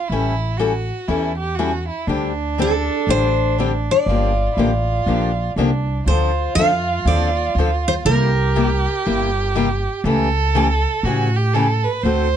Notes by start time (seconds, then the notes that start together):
0.08 A1 E3 G3 E4
0.12 C#4 E4 A4
0.57 E3 G3 C#4 E4 F#4 A4
1.08 E2 E3 G3 C#4 E4 A4
1.38 G4
1.55 E3 E4 F#4
1.59 G3 C#4 A4
1.88 E4
2.07 D2 D3 G3 C4 D4 G4
2.58 D3 G3 C4 D4 G4 A4
3.07 A1 D3 G3 C4 D4 G4 C5
3.58 D3 G3 C4 D4 G4
3.91 D5
4.06 G1 D3 F3 A#3 D4 F4
4.11 G4
4.52 E4 F4
4.57 A1 D3 F3 A#3 D4 G4
5.06 A#1 D3 F3 A#3 D4 G4
5.56 C2 D3 F3 A#3 D4 G4
6.06 D2 D3 F3 C4 D4 F4 A4 C5
6.55 F2 D3 F3 C4 F5
6.59 D4 A4
7.05 D#2 D3 F3 C4 D4 A4 D5
7.55 D2 D3 F3 C4
7.59 D4 A4
7.88 C5
8.05 C2 C3 G3 A#3 E4 G4 A#4
8.56 C3 G3 A#3 E4 G4
9.06 G1 C3 G3 A#3 E4 G4
9.55 C3 G3 A#3 E4 G4
10.04 C#2 C#3 E3 A3 C#4 G4 A4
10.55 C#3 E3 A3 C#4 G4
11.03 A2 C#3 E3 A3 F#4 G4
11.07 C#4
11.37 G4
11.54 C#3 E3 A3 C#4 G4 A4
11.85 B4
12.03 D2 D3 A3 C4 F#4 A4 C5